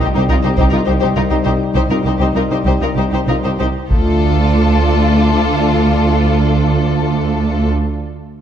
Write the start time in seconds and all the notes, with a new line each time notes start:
Already playing: G3 D#4
0.00 C2 D#4 G4 C5
0.14 C2 D#4 G4 C5
0.29 C2 D#4 F4 A#4
0.43 C2 D#4 G4 C5
0.56 C2 D#4 G4 C5, taiko
0.70 C2 D#4 A#4
0.75 F4
0.86 C2 D#4 G4 C5
1.00 C2 D#4 G4 C5
1.15 C2 D#4 F4 A#4
1.30 C2 D#4 G4 C5
1.44 C2 D#4 G4 C5
1.75 C2 D#4 G4 C5
1.90 C2 D#4 F4 A#4
2.04 C2 D#4 G4 C5
2.19 C2 D#4 G4 C5
2.34 C2 D#4 F4 A#4
2.50 C2 D#4 G4 C5
2.64 C2 D#4 G4 C5
2.81 C2 D#4 F4 A#4
2.96 C2 D#4 G4 C5
3.12 C2 D#4 G4 C5
3.28 C2 D#4 F4 A#4
3.44 C2 D#4 G4 C5
3.59 C2 D#4 G4 C5
3.91 D2 D3 A3 D4 F4 A4, taiko